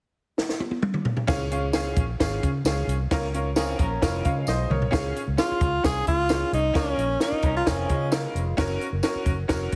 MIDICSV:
0, 0, Header, 1, 7, 480
1, 0, Start_track
1, 0, Key_signature, -5, "major"
1, 0, Tempo, 455581
1, 1354, Time_signature, 4, 2, 24, 8
1, 10278, End_track
2, 0, Start_track
2, 0, Title_t, "Upright piano"
2, 0, Program_c, 0, 0
2, 1342, Note_on_c, 0, 61, 105
2, 1344, Note_on_c, 0, 65, 92
2, 1353, Note_on_c, 0, 68, 102
2, 1488, Note_off_c, 0, 61, 0
2, 1489, Note_off_c, 0, 65, 0
2, 1494, Note_off_c, 0, 68, 0
2, 1589, Note_on_c, 0, 61, 72
2, 1596, Note_on_c, 0, 65, 62
2, 1599, Note_on_c, 0, 68, 70
2, 1732, Note_off_c, 0, 61, 0
2, 1735, Note_off_c, 0, 65, 0
2, 1737, Note_off_c, 0, 68, 0
2, 1835, Note_on_c, 0, 61, 83
2, 1835, Note_on_c, 0, 65, 71
2, 1843, Note_on_c, 0, 68, 85
2, 2114, Note_off_c, 0, 61, 0
2, 2114, Note_off_c, 0, 65, 0
2, 2118, Note_off_c, 0, 68, 0
2, 2314, Note_on_c, 0, 61, 72
2, 2327, Note_on_c, 0, 65, 71
2, 2335, Note_on_c, 0, 68, 84
2, 2594, Note_off_c, 0, 61, 0
2, 2601, Note_off_c, 0, 65, 0
2, 2604, Note_off_c, 0, 68, 0
2, 2797, Note_on_c, 0, 61, 74
2, 2806, Note_on_c, 0, 65, 67
2, 2810, Note_on_c, 0, 68, 78
2, 3076, Note_off_c, 0, 61, 0
2, 3080, Note_off_c, 0, 65, 0
2, 3082, Note_off_c, 0, 68, 0
2, 3278, Note_on_c, 0, 61, 98
2, 3283, Note_on_c, 0, 65, 100
2, 3289, Note_on_c, 0, 70, 109
2, 3416, Note_off_c, 0, 61, 0
2, 3419, Note_off_c, 0, 65, 0
2, 3422, Note_off_c, 0, 70, 0
2, 3515, Note_on_c, 0, 61, 65
2, 3522, Note_on_c, 0, 65, 63
2, 3535, Note_on_c, 0, 70, 75
2, 3655, Note_off_c, 0, 61, 0
2, 3658, Note_off_c, 0, 65, 0
2, 3665, Note_off_c, 0, 70, 0
2, 3754, Note_on_c, 0, 61, 92
2, 3762, Note_on_c, 0, 65, 85
2, 3771, Note_on_c, 0, 70, 87
2, 4034, Note_off_c, 0, 61, 0
2, 4039, Note_off_c, 0, 65, 0
2, 4043, Note_off_c, 0, 70, 0
2, 4231, Note_on_c, 0, 61, 76
2, 4233, Note_on_c, 0, 65, 69
2, 4241, Note_on_c, 0, 70, 83
2, 4473, Note_on_c, 0, 77, 61
2, 4479, Note_off_c, 0, 70, 0
2, 4484, Note_on_c, 0, 73, 46
2, 4513, Note_off_c, 0, 61, 0
2, 4514, Note_off_c, 0, 65, 0
2, 4703, Note_off_c, 0, 77, 0
2, 4709, Note_off_c, 0, 73, 0
2, 4719, Note_on_c, 0, 75, 66
2, 4728, Note_on_c, 0, 72, 56
2, 4946, Note_off_c, 0, 75, 0
2, 4951, Note_off_c, 0, 72, 0
2, 4953, Note_on_c, 0, 73, 60
2, 4960, Note_on_c, 0, 70, 46
2, 5171, Note_on_c, 0, 61, 95
2, 5178, Note_on_c, 0, 65, 86
2, 5185, Note_on_c, 0, 68, 104
2, 5411, Note_off_c, 0, 73, 0
2, 5415, Note_off_c, 0, 70, 0
2, 5463, Note_off_c, 0, 61, 0
2, 5467, Note_off_c, 0, 65, 0
2, 5470, Note_off_c, 0, 68, 0
2, 5661, Note_on_c, 0, 61, 76
2, 5674, Note_on_c, 0, 65, 60
2, 5685, Note_on_c, 0, 68, 73
2, 5949, Note_off_c, 0, 61, 0
2, 5955, Note_off_c, 0, 65, 0
2, 5961, Note_off_c, 0, 68, 0
2, 6143, Note_on_c, 0, 61, 65
2, 6148, Note_on_c, 0, 65, 52
2, 6158, Note_on_c, 0, 68, 67
2, 6430, Note_off_c, 0, 61, 0
2, 6433, Note_off_c, 0, 65, 0
2, 6438, Note_off_c, 0, 68, 0
2, 6625, Note_on_c, 0, 61, 60
2, 6632, Note_on_c, 0, 68, 69
2, 6633, Note_on_c, 0, 65, 55
2, 6911, Note_off_c, 0, 61, 0
2, 6915, Note_off_c, 0, 65, 0
2, 6915, Note_off_c, 0, 68, 0
2, 7097, Note_on_c, 0, 61, 91
2, 7109, Note_on_c, 0, 65, 73
2, 7113, Note_on_c, 0, 70, 88
2, 7387, Note_off_c, 0, 61, 0
2, 7393, Note_off_c, 0, 65, 0
2, 7395, Note_off_c, 0, 70, 0
2, 7600, Note_on_c, 0, 61, 74
2, 7604, Note_on_c, 0, 65, 64
2, 7607, Note_on_c, 0, 70, 76
2, 7879, Note_off_c, 0, 61, 0
2, 7881, Note_off_c, 0, 65, 0
2, 7882, Note_off_c, 0, 70, 0
2, 8066, Note_on_c, 0, 61, 61
2, 8080, Note_on_c, 0, 65, 58
2, 8082, Note_on_c, 0, 70, 70
2, 8352, Note_off_c, 0, 61, 0
2, 8359, Note_off_c, 0, 65, 0
2, 8360, Note_off_c, 0, 70, 0
2, 8547, Note_on_c, 0, 61, 60
2, 8555, Note_on_c, 0, 65, 57
2, 8563, Note_on_c, 0, 70, 69
2, 8832, Note_off_c, 0, 61, 0
2, 8836, Note_off_c, 0, 65, 0
2, 8840, Note_off_c, 0, 70, 0
2, 9030, Note_on_c, 0, 61, 107
2, 9039, Note_on_c, 0, 66, 94
2, 9050, Note_on_c, 0, 70, 117
2, 9313, Note_off_c, 0, 61, 0
2, 9318, Note_off_c, 0, 66, 0
2, 9323, Note_off_c, 0, 70, 0
2, 9512, Note_on_c, 0, 61, 90
2, 9519, Note_on_c, 0, 66, 83
2, 9527, Note_on_c, 0, 70, 96
2, 9794, Note_off_c, 0, 61, 0
2, 9798, Note_off_c, 0, 66, 0
2, 9802, Note_off_c, 0, 70, 0
2, 9988, Note_on_c, 0, 61, 79
2, 9996, Note_on_c, 0, 66, 79
2, 9997, Note_on_c, 0, 70, 86
2, 10272, Note_off_c, 0, 61, 0
2, 10276, Note_off_c, 0, 66, 0
2, 10277, Note_off_c, 0, 70, 0
2, 10278, End_track
3, 0, Start_track
3, 0, Title_t, "Tenor saxophone"
3, 0, Program_c, 1, 66
3, 5679, Note_on_c, 1, 65, 80
3, 6158, Note_on_c, 1, 68, 90
3, 6174, Note_off_c, 1, 65, 0
3, 6398, Note_off_c, 1, 68, 0
3, 6406, Note_on_c, 1, 65, 84
3, 6849, Note_off_c, 1, 65, 0
3, 6887, Note_on_c, 1, 63, 81
3, 7125, Note_on_c, 1, 61, 79
3, 7141, Note_off_c, 1, 63, 0
3, 7602, Note_off_c, 1, 61, 0
3, 7614, Note_on_c, 1, 63, 72
3, 7942, Note_off_c, 1, 63, 0
3, 7973, Note_on_c, 1, 65, 78
3, 8095, Note_on_c, 1, 61, 70
3, 8111, Note_off_c, 1, 65, 0
3, 8567, Note_off_c, 1, 61, 0
3, 10278, End_track
4, 0, Start_track
4, 0, Title_t, "Clean electric guitar"
4, 0, Program_c, 2, 27
4, 3764, Note_on_c, 2, 68, 66
4, 3770, Note_on_c, 2, 60, 60
4, 3989, Note_off_c, 2, 68, 0
4, 3991, Note_off_c, 2, 60, 0
4, 4004, Note_on_c, 2, 61, 63
4, 4007, Note_on_c, 2, 70, 70
4, 4228, Note_off_c, 2, 70, 0
4, 4229, Note_off_c, 2, 61, 0
4, 4238, Note_on_c, 2, 65, 76
4, 4245, Note_on_c, 2, 56, 64
4, 4922, Note_off_c, 2, 65, 0
4, 4925, Note_off_c, 2, 56, 0
4, 7834, Note_on_c, 2, 70, 70
4, 7843, Note_on_c, 2, 61, 54
4, 8064, Note_off_c, 2, 70, 0
4, 8069, Note_off_c, 2, 61, 0
4, 8074, Note_on_c, 2, 68, 84
4, 8078, Note_on_c, 2, 60, 73
4, 8304, Note_off_c, 2, 68, 0
4, 8306, Note_off_c, 2, 60, 0
4, 8312, Note_on_c, 2, 65, 71
4, 8319, Note_on_c, 2, 56, 52
4, 8999, Note_off_c, 2, 65, 0
4, 9002, Note_off_c, 2, 56, 0
4, 10278, End_track
5, 0, Start_track
5, 0, Title_t, "Fingered electric bass"
5, 0, Program_c, 3, 33
5, 1352, Note_on_c, 3, 37, 86
5, 2037, Note_off_c, 3, 37, 0
5, 2070, Note_on_c, 3, 34, 85
5, 2258, Note_off_c, 3, 34, 0
5, 2323, Note_on_c, 3, 32, 98
5, 2506, Note_off_c, 3, 32, 0
5, 2563, Note_on_c, 3, 49, 86
5, 2747, Note_off_c, 3, 49, 0
5, 2785, Note_on_c, 3, 37, 96
5, 2976, Note_off_c, 3, 37, 0
5, 3025, Note_on_c, 3, 36, 83
5, 3215, Note_off_c, 3, 36, 0
5, 3277, Note_on_c, 3, 37, 94
5, 3961, Note_off_c, 3, 37, 0
5, 3991, Note_on_c, 3, 34, 91
5, 4180, Note_off_c, 3, 34, 0
5, 4241, Note_on_c, 3, 29, 98
5, 4426, Note_off_c, 3, 29, 0
5, 4483, Note_on_c, 3, 49, 97
5, 4667, Note_off_c, 3, 49, 0
5, 4711, Note_on_c, 3, 35, 91
5, 4900, Note_off_c, 3, 35, 0
5, 4951, Note_on_c, 3, 36, 75
5, 5140, Note_off_c, 3, 36, 0
5, 5198, Note_on_c, 3, 37, 88
5, 5384, Note_off_c, 3, 37, 0
5, 5557, Note_on_c, 3, 37, 87
5, 5650, Note_off_c, 3, 37, 0
5, 5913, Note_on_c, 3, 37, 79
5, 6101, Note_off_c, 3, 37, 0
5, 6156, Note_on_c, 3, 36, 84
5, 6343, Note_off_c, 3, 36, 0
5, 6396, Note_on_c, 3, 37, 87
5, 6770, Note_off_c, 3, 37, 0
5, 6875, Note_on_c, 3, 36, 79
5, 7063, Note_off_c, 3, 36, 0
5, 7113, Note_on_c, 3, 37, 96
5, 7302, Note_off_c, 3, 37, 0
5, 7347, Note_on_c, 3, 34, 82
5, 7538, Note_off_c, 3, 34, 0
5, 7829, Note_on_c, 3, 36, 82
5, 8019, Note_off_c, 3, 36, 0
5, 8078, Note_on_c, 3, 29, 87
5, 8264, Note_off_c, 3, 29, 0
5, 8322, Note_on_c, 3, 49, 103
5, 8694, Note_off_c, 3, 49, 0
5, 8796, Note_on_c, 3, 29, 81
5, 8983, Note_off_c, 3, 29, 0
5, 9038, Note_on_c, 3, 30, 101
5, 9225, Note_off_c, 3, 30, 0
5, 9402, Note_on_c, 3, 30, 83
5, 9494, Note_off_c, 3, 30, 0
5, 9751, Note_on_c, 3, 30, 76
5, 9940, Note_off_c, 3, 30, 0
5, 10003, Note_on_c, 3, 29, 80
5, 10187, Note_off_c, 3, 29, 0
5, 10246, Note_on_c, 3, 30, 76
5, 10278, Note_off_c, 3, 30, 0
5, 10278, End_track
6, 0, Start_track
6, 0, Title_t, "Muted fingered electric bass strokes"
6, 5808, Note_on_c, 9, 29, 35
6, 5913, Note_off_c, 9, 29, 0
6, 7710, Note_on_c, 9, 29, 37
6, 7816, Note_off_c, 9, 29, 0
6, 9642, Note_on_c, 9, 29, 33
6, 9748, Note_off_c, 9, 29, 0
6, 10278, End_track
7, 0, Start_track
7, 0, Title_t, "Drums"
7, 400, Note_on_c, 9, 38, 58
7, 506, Note_off_c, 9, 38, 0
7, 518, Note_on_c, 9, 38, 53
7, 624, Note_off_c, 9, 38, 0
7, 634, Note_on_c, 9, 48, 66
7, 739, Note_off_c, 9, 48, 0
7, 750, Note_on_c, 9, 48, 53
7, 855, Note_off_c, 9, 48, 0
7, 869, Note_on_c, 9, 47, 83
7, 975, Note_off_c, 9, 47, 0
7, 988, Note_on_c, 9, 45, 72
7, 1093, Note_off_c, 9, 45, 0
7, 1107, Note_on_c, 9, 43, 93
7, 1212, Note_off_c, 9, 43, 0
7, 1229, Note_on_c, 9, 43, 81
7, 1334, Note_off_c, 9, 43, 0
7, 1349, Note_on_c, 9, 49, 79
7, 1352, Note_on_c, 9, 36, 118
7, 1353, Note_on_c, 9, 38, 90
7, 1364, Note_on_c, 9, 54, 63
7, 1454, Note_off_c, 9, 49, 0
7, 1457, Note_off_c, 9, 36, 0
7, 1458, Note_off_c, 9, 38, 0
7, 1469, Note_off_c, 9, 54, 0
7, 1596, Note_on_c, 9, 42, 65
7, 1701, Note_off_c, 9, 42, 0
7, 1826, Note_on_c, 9, 38, 102
7, 1827, Note_on_c, 9, 54, 87
7, 1831, Note_on_c, 9, 42, 83
7, 1932, Note_off_c, 9, 38, 0
7, 1932, Note_off_c, 9, 54, 0
7, 1937, Note_off_c, 9, 42, 0
7, 2068, Note_on_c, 9, 42, 69
7, 2071, Note_on_c, 9, 36, 100
7, 2174, Note_off_c, 9, 42, 0
7, 2177, Note_off_c, 9, 36, 0
7, 2321, Note_on_c, 9, 36, 70
7, 2321, Note_on_c, 9, 38, 108
7, 2321, Note_on_c, 9, 42, 91
7, 2326, Note_on_c, 9, 54, 80
7, 2426, Note_off_c, 9, 36, 0
7, 2426, Note_off_c, 9, 38, 0
7, 2426, Note_off_c, 9, 42, 0
7, 2432, Note_off_c, 9, 54, 0
7, 2561, Note_on_c, 9, 42, 63
7, 2563, Note_on_c, 9, 36, 77
7, 2666, Note_off_c, 9, 42, 0
7, 2669, Note_off_c, 9, 36, 0
7, 2794, Note_on_c, 9, 54, 82
7, 2800, Note_on_c, 9, 38, 97
7, 2801, Note_on_c, 9, 42, 84
7, 2899, Note_off_c, 9, 54, 0
7, 2905, Note_off_c, 9, 38, 0
7, 2906, Note_off_c, 9, 42, 0
7, 3044, Note_on_c, 9, 42, 65
7, 3149, Note_off_c, 9, 42, 0
7, 3276, Note_on_c, 9, 42, 75
7, 3278, Note_on_c, 9, 36, 109
7, 3281, Note_on_c, 9, 38, 104
7, 3283, Note_on_c, 9, 54, 59
7, 3381, Note_off_c, 9, 42, 0
7, 3383, Note_off_c, 9, 36, 0
7, 3386, Note_off_c, 9, 38, 0
7, 3389, Note_off_c, 9, 54, 0
7, 3406, Note_on_c, 9, 38, 34
7, 3512, Note_off_c, 9, 38, 0
7, 3521, Note_on_c, 9, 42, 65
7, 3626, Note_off_c, 9, 42, 0
7, 3751, Note_on_c, 9, 54, 82
7, 3753, Note_on_c, 9, 38, 107
7, 3758, Note_on_c, 9, 42, 85
7, 3856, Note_off_c, 9, 54, 0
7, 3858, Note_off_c, 9, 38, 0
7, 3864, Note_off_c, 9, 42, 0
7, 3991, Note_on_c, 9, 42, 70
7, 3994, Note_on_c, 9, 36, 94
7, 4096, Note_off_c, 9, 42, 0
7, 4100, Note_off_c, 9, 36, 0
7, 4239, Note_on_c, 9, 38, 105
7, 4239, Note_on_c, 9, 42, 89
7, 4240, Note_on_c, 9, 36, 79
7, 4244, Note_on_c, 9, 54, 85
7, 4344, Note_off_c, 9, 38, 0
7, 4344, Note_off_c, 9, 42, 0
7, 4345, Note_off_c, 9, 36, 0
7, 4350, Note_off_c, 9, 54, 0
7, 4474, Note_on_c, 9, 42, 63
7, 4481, Note_on_c, 9, 36, 83
7, 4579, Note_off_c, 9, 42, 0
7, 4586, Note_off_c, 9, 36, 0
7, 4708, Note_on_c, 9, 54, 74
7, 4721, Note_on_c, 9, 38, 49
7, 4814, Note_off_c, 9, 54, 0
7, 4826, Note_off_c, 9, 38, 0
7, 4959, Note_on_c, 9, 45, 78
7, 5064, Note_off_c, 9, 45, 0
7, 5076, Note_on_c, 9, 43, 81
7, 5181, Note_off_c, 9, 43, 0
7, 5195, Note_on_c, 9, 36, 96
7, 5195, Note_on_c, 9, 42, 71
7, 5200, Note_on_c, 9, 38, 98
7, 5206, Note_on_c, 9, 54, 57
7, 5300, Note_off_c, 9, 36, 0
7, 5301, Note_off_c, 9, 42, 0
7, 5305, Note_off_c, 9, 38, 0
7, 5311, Note_off_c, 9, 54, 0
7, 5440, Note_on_c, 9, 42, 55
7, 5545, Note_off_c, 9, 42, 0
7, 5671, Note_on_c, 9, 38, 91
7, 5671, Note_on_c, 9, 54, 86
7, 5676, Note_on_c, 9, 42, 80
7, 5776, Note_off_c, 9, 38, 0
7, 5776, Note_off_c, 9, 54, 0
7, 5781, Note_off_c, 9, 42, 0
7, 5908, Note_on_c, 9, 42, 73
7, 5911, Note_on_c, 9, 36, 97
7, 6013, Note_off_c, 9, 42, 0
7, 6016, Note_off_c, 9, 36, 0
7, 6156, Note_on_c, 9, 38, 100
7, 6157, Note_on_c, 9, 42, 82
7, 6158, Note_on_c, 9, 36, 73
7, 6160, Note_on_c, 9, 54, 82
7, 6262, Note_off_c, 9, 38, 0
7, 6262, Note_off_c, 9, 42, 0
7, 6263, Note_off_c, 9, 36, 0
7, 6265, Note_off_c, 9, 54, 0
7, 6393, Note_on_c, 9, 42, 65
7, 6399, Note_on_c, 9, 36, 70
7, 6499, Note_off_c, 9, 42, 0
7, 6504, Note_off_c, 9, 36, 0
7, 6629, Note_on_c, 9, 54, 83
7, 6637, Note_on_c, 9, 38, 97
7, 6639, Note_on_c, 9, 42, 71
7, 6735, Note_off_c, 9, 54, 0
7, 6743, Note_off_c, 9, 38, 0
7, 6744, Note_off_c, 9, 42, 0
7, 6882, Note_on_c, 9, 42, 58
7, 6987, Note_off_c, 9, 42, 0
7, 7111, Note_on_c, 9, 42, 59
7, 7115, Note_on_c, 9, 36, 105
7, 7116, Note_on_c, 9, 38, 96
7, 7123, Note_on_c, 9, 54, 66
7, 7216, Note_off_c, 9, 42, 0
7, 7220, Note_off_c, 9, 36, 0
7, 7221, Note_off_c, 9, 38, 0
7, 7229, Note_off_c, 9, 54, 0
7, 7360, Note_on_c, 9, 42, 60
7, 7465, Note_off_c, 9, 42, 0
7, 7590, Note_on_c, 9, 38, 94
7, 7595, Note_on_c, 9, 42, 81
7, 7596, Note_on_c, 9, 54, 75
7, 7695, Note_off_c, 9, 38, 0
7, 7700, Note_off_c, 9, 42, 0
7, 7701, Note_off_c, 9, 54, 0
7, 7821, Note_on_c, 9, 42, 71
7, 7831, Note_on_c, 9, 36, 87
7, 7926, Note_off_c, 9, 42, 0
7, 7936, Note_off_c, 9, 36, 0
7, 8077, Note_on_c, 9, 38, 102
7, 8077, Note_on_c, 9, 42, 92
7, 8080, Note_on_c, 9, 36, 66
7, 8082, Note_on_c, 9, 54, 82
7, 8182, Note_off_c, 9, 38, 0
7, 8182, Note_off_c, 9, 42, 0
7, 8185, Note_off_c, 9, 36, 0
7, 8187, Note_off_c, 9, 54, 0
7, 8315, Note_on_c, 9, 42, 56
7, 8322, Note_on_c, 9, 36, 76
7, 8421, Note_off_c, 9, 42, 0
7, 8428, Note_off_c, 9, 36, 0
7, 8553, Note_on_c, 9, 54, 82
7, 8557, Note_on_c, 9, 38, 104
7, 8559, Note_on_c, 9, 42, 88
7, 8658, Note_off_c, 9, 54, 0
7, 8663, Note_off_c, 9, 38, 0
7, 8664, Note_off_c, 9, 42, 0
7, 8805, Note_on_c, 9, 42, 63
7, 8910, Note_off_c, 9, 42, 0
7, 9038, Note_on_c, 9, 42, 67
7, 9040, Note_on_c, 9, 54, 59
7, 9041, Note_on_c, 9, 36, 112
7, 9042, Note_on_c, 9, 38, 105
7, 9143, Note_off_c, 9, 42, 0
7, 9145, Note_off_c, 9, 54, 0
7, 9146, Note_off_c, 9, 36, 0
7, 9148, Note_off_c, 9, 38, 0
7, 9283, Note_on_c, 9, 42, 53
7, 9389, Note_off_c, 9, 42, 0
7, 9513, Note_on_c, 9, 54, 79
7, 9518, Note_on_c, 9, 38, 96
7, 9523, Note_on_c, 9, 42, 74
7, 9618, Note_off_c, 9, 54, 0
7, 9624, Note_off_c, 9, 38, 0
7, 9629, Note_off_c, 9, 42, 0
7, 9751, Note_on_c, 9, 42, 67
7, 9756, Note_on_c, 9, 36, 96
7, 9856, Note_off_c, 9, 42, 0
7, 9861, Note_off_c, 9, 36, 0
7, 9999, Note_on_c, 9, 38, 100
7, 9999, Note_on_c, 9, 42, 85
7, 10003, Note_on_c, 9, 36, 74
7, 10007, Note_on_c, 9, 54, 78
7, 10104, Note_off_c, 9, 38, 0
7, 10104, Note_off_c, 9, 42, 0
7, 10108, Note_off_c, 9, 36, 0
7, 10113, Note_off_c, 9, 54, 0
7, 10243, Note_on_c, 9, 42, 61
7, 10246, Note_on_c, 9, 36, 71
7, 10278, Note_off_c, 9, 36, 0
7, 10278, Note_off_c, 9, 42, 0
7, 10278, End_track
0, 0, End_of_file